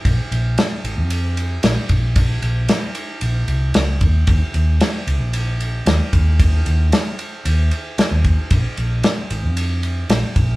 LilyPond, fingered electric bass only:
\new Staff \with { instrumentName = "Fingered electric bass" } { \clef bass \time 4/4 \key bes \minor \tempo 4 = 113 bes,,16 r16 bes,,8 r8 aes,,16 f,4~ f,16 bes,,16 r16 bes,,8~ | bes,,8 bes,,8 r4 bes,,8 c,8 des,8 ees,8 | ees,16 r16 ees,8 r8 des,16 bes,,4~ bes,,16 ees,16 r16 ees,8~ | ees,8 ees,8 r4 ees,8 r8. ees,8 r16 |
bes,,16 r16 bes,,8 r8 aes,,16 f,4~ f,16 bes,,16 r16 bes,,8 | }